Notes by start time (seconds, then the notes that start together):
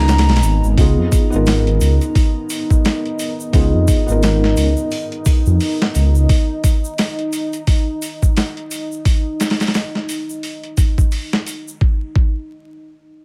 Already playing: C#2 B3 D#4 F#4 A#4 B4 A#5
0.08 snare, open hi-hat, shaker
0.18 snare, open hi-hat
0.29 B1, snare, open hi-hat
0.36 snare, open hi-hat
0.43 G#1, open hi-hat, shaker
0.64 G#1, shaker
0.77 C#2 B3 D#4 F4 G#4, kick, open hi-hat, shaker
0.98 F2
1.12 kick, open hi-hat, shaker
1.30 G#1 B3 D#4 F4, shaker
1.36 A#4
1.46 snare, open hi-hat, shaker
1.67 closed hi-hat
1.81 C#2, open hi-hat, shaker
2.01 closed hi-hat, shaker
2.15 kick, open hi-hat, shaker
2.50 open hi-hat, shaker
2.70 kick, shaker
2.85 snare, open hi-hat, shaker
3.06 closed hi-hat
3.19 open hi-hat, shaker
3.40 shaker
3.53 C#2 B3 D#4 F4 G#4, kick, open hi-hat, shaker
3.74 F2
3.88 kick, open hi-hat, shaker
4.06 G#1 B3 D#4 F4, shaker
4.12 A#4
4.22 snare, open hi-hat, shaker
4.44 snare
4.57 C#2, open hi-hat, shaker
4.77 shaker
4.91 open hi-hat, shaker
5.12 closed hi-hat
5.25 kick, open hi-hat, shaker
5.46 F2, shaker
5.60 open hi-hat, shaker
5.82 snare
5.95 C#2, open hi-hat, shaker
6.15 shaker
6.29 kick, open hi-hat, shaker
6.64 kick, open hi-hat, shaker
6.84 shaker
6.98 snare, open hi-hat, shaker
7.19 closed hi-hat
7.33 open hi-hat, shaker
7.53 closed hi-hat, shaker
7.67 kick, open hi-hat, shaker
8.02 open hi-hat, shaker
8.22 kick, shaker
8.37 snare, open hi-hat, shaker
8.57 closed hi-hat
8.71 open hi-hat, shaker
8.92 shaker
9.05 kick, open hi-hat, shaker
9.40 snare, open hi-hat, shaker
9.50 snare, open hi-hat
9.60 snare, open hi-hat, shaker
9.67 snare, open hi-hat
9.74 snare, open hi-hat, shaker
9.95 snare
10.09 open hi-hat, shaker
10.30 shaker
10.43 open hi-hat, shaker
10.64 closed hi-hat
10.77 kick, open hi-hat, shaker
10.98 kick, shaker
11.11 open hi-hat, shaker
11.33 snare
11.46 open hi-hat, shaker
11.68 shaker
11.81 kick
12.15 kick